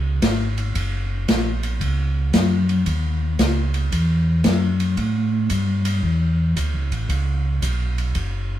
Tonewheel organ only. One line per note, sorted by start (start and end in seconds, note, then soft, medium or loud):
0.00 0.21 C#2 medium
0.22 0.74 G#1 loud
0.75 1.27 F#1 medium
1.28 1.80 A#1 medium
1.81 2.32 C#2 medium
2.33 2.85 F#2 loud
2.87 3.38 D#2 medium
3.39 3.91 C#2 medium
3.92 4.44 E2 medium
4.45 4.96 F#2 medium
4.97 5.49 A2 medium
5.50 6.02 G2 medium
6.03 6.55 E2 medium
6.56 6.74 D2 medium
6.74 6.92 C#2 medium
6.91 7.08 A1 medium
7.09 7.61 C#2 medium
7.62 8.14 B1 medium
8.15 8.59 F#1 medium